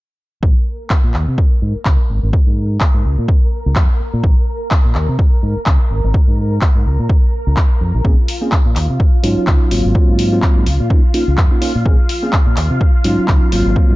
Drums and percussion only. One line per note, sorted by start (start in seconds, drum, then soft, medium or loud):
0.43 kick loud
0.90 kick loud
0.90 clap loud
1.14 clap medium
1.38 kick loud
1.85 kick medium
1.85 clap loud
2.33 kick loud
2.81 kick loud
2.81 clap loud
3.28 kick loud
3.76 kick loud
3.76 clap loud
4.24 kick loud
4.71 kick loud
4.71 clap loud
4.95 clap medium
5.19 kick loud
5.66 kick loud
5.66 clap loud
6.14 kick loud
6.61 kick loud
6.61 clap loud
7.09 kick loud
7.57 kick loud
7.57 clap loud
8.05 kick loud
8.28 open hi-hat loud
8.28 maracas medium
8.41 maracas soft
8.52 kick loud
8.52 clap loud
8.76 clap medium
8.76 open hi-hat medium
8.90 maracas soft
9.00 kick loud
9.24 open hi-hat medium
9.24 maracas medium
9.37 maracas soft
9.47 kick loud
9.47 clap loud
9.71 open hi-hat medium
9.71 maracas medium
9.85 maracas soft
9.95 kick loud
10.19 open hi-hat medium
10.19 maracas medium
10.32 maracas soft
10.42 kick loud
10.42 clap loud
10.66 open hi-hat medium
10.66 maracas medium
10.80 maracas soft
10.90 kick loud
11.14 open hi-hat medium
11.14 maracas medium
11.28 maracas soft
11.38 kick loud
11.38 clap loud
11.62 open hi-hat medium
11.62 maracas medium
11.76 maracas soft
11.86 kick loud
12.09 open hi-hat medium
12.09 maracas medium
12.22 maracas soft
12.33 kick loud
12.33 clap loud
12.57 clap medium
12.57 open hi-hat medium
12.57 maracas medium
12.71 maracas soft
12.80 kick loud
12.80 maracas soft
13.04 open hi-hat medium
13.04 maracas medium
13.18 maracas soft
13.28 kick loud
13.28 clap loud
13.52 open hi-hat medium
13.52 maracas medium
13.66 maracas soft
13.76 kick loud
13.76 maracas soft
13.89 maracas soft